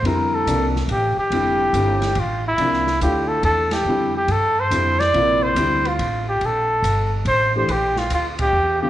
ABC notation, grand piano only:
X:1
M:3/4
L:1/8
Q:"Swing" 1/4=141
K:F
V:1 name="Grand piano"
[D,G,CE]2 [C,F,B,D] z3 | [D,G,CE]2 [D,G,CE] z3 | [C,F,B,D] z [A,DEF]3 z | [D,G,CE] z3 [D,G,CE] z |
[C,F,B,E]2 [D,G,CE] z3 | z4 z [E,A,DG] | z4 z [D,G,CF] |]